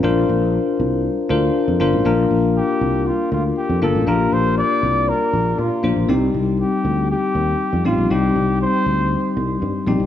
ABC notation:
X:1
M:4/4
L:1/16
Q:1/4=119
K:Bb
V:1 name="Flugelhorn"
z16 | z4 G4 F2 F2 G2 A2 | B2 c2 d4 B4 F3 z | z4 G4 G6 F2 |
G4 c6 z6 |]
V:2 name="Tine electric piano"
[DFBc]6 z4 [DFBc]4 [DFBc]2 | [B,DFB]6 z8 [B,DFB]2 | [B,DFG]6 z8 [B,DFc]2 | [G,CEG]6 z8 [G,CEG]2 |
[G,CEG]6 z8 [G,CEG]2 |]
V:3 name="Fretless electric bass" clef=bass
B,,,2 B,,,3 z C,,3 z D,,2 z F,, G,,, A,,, | B,,,2 B,,,3 z C,,3 z D,,2 z F,, G,,, A,,, | B,,,2 B,,,3 z C,,3 z B,,,2 B,, z B,,, B,,, | C,,2 C,,3 z D,,3 z E,,2 z F,, A,,, B,,, |
C,,2 C,,3 z D,,3 z C,,2 G,, z B,,, C,, |]